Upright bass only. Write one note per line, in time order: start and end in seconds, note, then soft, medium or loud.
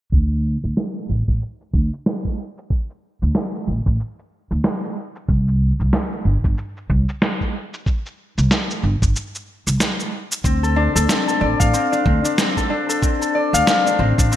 0.12 0.55 D2 medium
0.64 0.73 D2 medium
1.09 1.23 A1 medium
1.28 1.37 A1 medium
1.74 1.87 D2 medium
3.22 3.31 D2 medium
3.67 3.81 A1 medium
3.86 3.95 A1 medium
4.51 4.60 D2 medium
5.28 5.71 C2 medium
5.80 5.89 C2 medium
6.25 6.39 G1 medium
6.44 6.54 G1 medium
6.90 7.03 C2 loud
8.38 8.47 C2 medium
8.83 8.97 G1 medium
9.02 9.12 G1 medium
9.67 9.76 C2 medium
10.44 10.87 D2 medium
10.96 11.05 D2 medium
11.41 11.55 A1 medium
11.60 11.70 A1 medium
12.06 12.19 D2 medium
13.53 13.63 D2 medium
13.99 14.13 A1 medium
14.18 14.28 A1 medium